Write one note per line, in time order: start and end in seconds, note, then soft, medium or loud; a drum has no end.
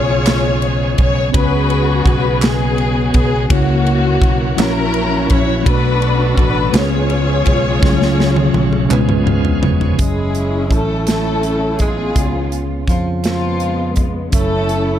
0.00 0.94 B1 medium
0.00 0.22 C#3 medium
0.00 1.30 F3 medium
0.00 1.30 G#3 medium
0.00 1.28 B3 medium
0.00 1.30 B3 medium
0.00 1.29 C#4 medium
0.00 1.30 C#4 medium
0.00 0.95 F4 medium
0.00 1.30 F4 medium
0.00 0.96 G#4 medium
0.00 1.30 G#4 medium
0.00 1.31 G#4 medium
0.00 0.95 C#5 loud
0.00 1.32 C#5 medium
0.26 snare loud
0.26 clap medium
0.26 ride medium
0.62 ride soft
0.98 1.32 B1 loud
0.98 1.33 C#5 loud
0.98 kick medium
0.98 ride medium
1.30 2.02 C#2 loud
1.30 2.38 C#3 medium
1.30 3.46 F#3 medium
1.30 3.46 G#3 medium
1.30 3.44 B3 medium
1.30 3.46 B3 medium
1.30 3.45 C#4 medium
1.30 3.46 C#4 medium
1.30 3.46 F#4 medium
1.30 3.46 G#4 medium
1.34 2.40 F#4 medium
1.34 3.47 G#4 medium
1.34 2.40 G#4 medium
1.34 2.07 B4 medium
1.34 1.42 B4 medium
1.34 kick loud
1.34 ride medium
1.44 3.51 C#5 medium
1.70 ride soft
2.05 3.10 B1 medium
2.05 2.41 B4 medium
2.05 kick medium
2.05 ride soft
2.42 3.48 B3 medium
2.42 3.15 G#4 medium
2.42 snare loud
2.42 clap medium
2.42 ride medium
2.78 ride soft
3.14 3.48 B1 medium
3.14 3.49 G#4 medium
3.14 kick medium
3.14 ride medium
3.49 4.18 C#2 loud
3.49 4.54 C#3 medium
3.49 4.57 E3 medium
3.49 4.57 F#3 medium
3.49 4.58 A#3 medium
3.49 4.57 A#3 medium
3.49 4.55 A#3 medium
3.49 4.55 C#4 medium
3.49 4.57 C#4 medium
3.49 4.56 E4 medium
3.49 4.58 F#4 medium
3.49 4.57 F#4 medium
3.49 4.59 F#4 medium
3.49 4.58 C#5 medium
3.49 kick loud
3.49 ride medium
3.87 ride soft
4.22 4.55 B1 medium
4.22 kick medium
4.22 ride soft
4.56 5.26 A#1 loud
4.56 5.62 A#2 medium
4.56 5.67 E3 medium
4.56 5.65 F#3 medium
4.56 4.64 G#3 medium
4.56 5.67 A#3 medium
4.56 5.66 C#4 medium
4.56 5.66 E4 medium
4.56 4.65 F4 medium
4.56 5.65 F#4 medium
4.56 5.67 C#5 medium
4.56 clap medium
4.56 ride medium
4.60 5.68 A#3 medium
4.60 5.63 C#4 medium
4.60 5.64 E4 medium
4.60 5.31 A#4 loud
4.60 snare loud
4.65 5.70 F#4 medium
4.94 ride soft
5.30 5.63 A#1 medium
5.30 5.65 C#5 loud
5.30 kick medium
5.30 ride medium
5.63 6.35 B1 loud
5.63 6.70 B2 medium
5.63 6.74 F#3 medium
5.63 6.73 A3 medium
5.63 6.74 A3 medium
5.63 6.71 B3 medium
5.63 6.72 B3 medium
5.63 6.74 D4 medium
5.63 6.74 F#4 medium
5.63 6.74 A4 medium
5.63 6.75 B4 medium
5.63 kick loud
5.63 ride medium
5.68 6.72 D4 medium
5.68 6.72 F#4 medium
5.68 6.39 B4 loud
6.02 ride soft
6.37 6.71 A1 medium
6.37 6.73 B4 medium
6.37 kick medium
6.37 ride soft
6.71 7.42 C#2 loud
6.71 7.78 C#3 medium
6.71 7.82 F3 medium
6.71 7.81 G#3 medium
6.71 7.82 B3 medium
6.71 7.81 C#4 medium
6.71 7.80 C#4 medium
6.71 7.82 F4 medium
6.71 7.82 G#4 medium
6.71 6.81 A#4 medium
6.71 clap medium
6.71 ride medium
6.75 9.25 F4 medium
6.75 9.25 G#4 medium
6.75 9.29 C#5 loud
6.75 snare loud
6.81 7.86 B4 medium
7.10 ride soft
7.46 7.80 B1 loud
7.46 kick medium
7.46 ride medium
7.80 8.51 C#2 loud
7.80 8.86 C#3 medium
7.80 8.91 F#3 medium
7.80 7.89 G#3 medium
7.80 8.89 A3 medium
7.80 8.89 C#4 medium
7.80 8.91 C#4 medium
7.80 kick loud
7.84 snare medium
7.89 8.94 A3 medium
8.02 snare medium
8.20 snare medium
8.36 high tom medium
8.54 8.88 B1 loud
8.54 high tom medium
8.73 mid tom medium
8.89 9.59 C#2 loud
8.89 9.95 C#3 medium
8.89 8.98 E3 medium
8.89 9.98 G#3 medium
8.89 10.00 G#3 medium
8.89 9.98 B3 medium
8.89 10.00 B3 medium
8.89 9.96 C#4 medium
8.89 10.00 C#4 medium
8.89 9.99 F4 medium
8.89 9.99 G#4 medium
8.89 10.00 B4 medium
8.89 clap medium
8.89 mid tom medium
8.98 10.03 F3 medium
9.09 mid tom medium
9.26 9.60 F5 medium
9.26 mid tom medium
9.45 floor tom medium
9.62 9.96 F1 medium
9.62 9.97 C#5 medium
9.62 floor tom loud
9.81 floor tom loud
9.96 10.67 F#1 medium
9.96 12.10 F#3 medium
9.96 12.11 C#4 soft
9.96 12.12 E5 soft
9.96 kick medium
9.96 closed hi-hat medium
10.00 10.75 G#3 medium
10.00 11.04 C#4 medium
10.00 11.05 E4 medium
10.00 10.68 G#4 medium
10.00 12.13 C#5 medium
10.35 closed hi-hat soft
10.71 12.12 A1 medium
10.71 11.08 A3 medium
10.71 11.05 A4 medium
10.71 kick medium
10.71 closed hi-hat soft
11.07 11.77 A3 medium
11.07 12.13 C#4 medium
11.07 12.13 E4 medium
11.07 11.76 A4 medium
11.07 snare medium
11.07 closed hi-hat medium
11.43 closed hi-hat soft
11.79 12.49 G#3 medium
11.79 12.86 F4 medium
11.79 12.52 G#4 medium
11.79 kick medium
11.79 closed hi-hat medium
11.83 12.86 B3 medium
12.12 13.20 C#3 soft
12.12 14.27 B3 medium
12.12 14.28 C#4 soft
12.12 14.29 F4 soft
12.12 kick medium
12.12 closed hi-hat medium
12.16 12.84 C#2 medium
12.16 14.30 G#4 medium
12.16 14.31 C#5 medium
12.52 closed hi-hat soft
12.87 14.29 F2 medium
12.87 13.22 F3 medium
12.87 13.05 F4 medium
12.87 kick medium
12.87 closed hi-hat soft
13.24 14.02 F3 medium
13.24 14.30 G#3 medium
13.24 14.30 B3 medium
13.24 14.03 F4 medium
13.24 snare medium
13.24 closed hi-hat medium
13.60 closed hi-hat soft
13.96 kick medium
13.96 closed hi-hat medium
14.31 14.99 F#1 medium
14.31 14.99 F#3 soft
14.31 14.99 A3 medium
14.31 14.99 C#4 soft
14.31 14.99 E4 medium
14.31 14.99 A4 medium
14.31 14.99 C#5 medium
14.31 14.99 E5 soft
14.31 kick loud
14.31 closed hi-hat medium
14.35 14.99 C#4 medium
14.69 closed hi-hat soft